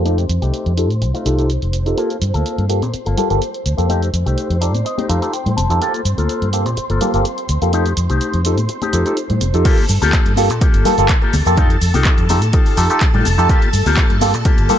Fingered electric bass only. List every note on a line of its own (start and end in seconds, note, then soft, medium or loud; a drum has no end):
0.00 0.24 F2 medium
0.29 0.39 F2 medium
0.42 0.50 C2 medium
0.66 0.90 F2 medium
0.90 1.03 A2 medium
1.02 1.11 C2 medium
1.26 1.57 C2 medium
1.62 1.93 F1 medium
2.22 2.31 G2 medium
2.34 2.42 D2 medium
2.58 2.82 G2 medium
2.82 2.90 A#2 medium
2.94 muted fingered electric bass stroke soft
3.07 3.15 G1 medium
3.31 3.39 G1 medium
3.66 3.75 D2 medium
3.78 4.08 F2 medium
4.14 4.23 F2 medium
4.26 4.34 C2 medium
4.50 4.74 F2 medium
4.74 4.82 A2 medium
5.09 5.19 F2 medium
5.46 5.54 A2 medium
5.58 5.67 F1 medium
5.70 5.78 F2 medium
6.05 6.15 G2 medium
6.18 6.26 D2 medium
6.42 6.66 G2 medium
6.66 6.74 A#2 medium
6.77 muted fingered electric bass stroke soft
6.90 6.98 G1 medium
7.14 7.22 G1 medium
7.49 7.58 D2 medium
7.62 7.92 F2 medium
7.97 8.07 F2 medium
8.10 8.18 C2 medium
8.34 8.58 F2 medium
8.58 8.66 A2 medium
8.93 9.03 F2 medium
9.30 9.38 A2 medium
9.41 9.51 F1 medium
9.54 9.62 F2 medium
9.90 9.99 G2 loud
10.02 10.10 D2 loud
10.26 10.50 G2 loud
10.50 10.58 A#2 medium
10.62 muted fingered electric bass stroke soft
10.74 10.82 G1 medium
10.98 11.06 G1 medium
11.34 11.43 D2 medium
11.46 11.77 F2 medium
11.81 11.91 F2 loud
11.94 12.02 C2 medium
12.18 12.42 F2 loud
12.42 12.50 A2 medium
12.78 12.87 F2 medium
13.14 13.22 A2 loud
13.26 13.35 F1 loud
13.38 13.46 F2 medium
13.73 13.83 G2 loud
13.86 13.94 D2 loud
14.10 14.34 G2 loud
14.34 14.42 A#2 medium
14.45 muted fingered electric bass stroke soft
14.59 14.67 G1 medium